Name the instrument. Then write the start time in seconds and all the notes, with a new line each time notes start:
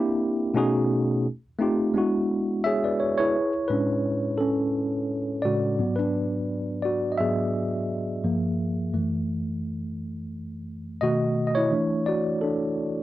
tine electric piano
Already playing: A#3 C4 D4 E4 G4
0.54 B2 A3 C#4 D#4 F#4 G#4
1.59 A3 C4 D#4 F4 G4
1.94 G#3 B3 D4 E4 F#4
2.64 G#4 C#5 E5
2.84 B4 D5
3.00 C#5
3.18 E4 G#4 B4 C#5
3.68 A2 G#3 C#4 D4 B4
4.38 C#4 A4
5.42 A2 C#3 G#3 F#4 D5
5.79 G#2 F#3 B3
5.96 D4 B4
6.82 F#4 D5
7.12 D#5
7.18 G#2 F#3 B3 G#4 E5
8.24 G2 F3 A#3
8.93 F#2 E3 A3
11.01 B2 D#3 A3 F#4 D#5
11.47 D#5
11.55 E4 C#5
11.71 E3 A3 D4
12.06 F#4 D5
12.41 D4 A4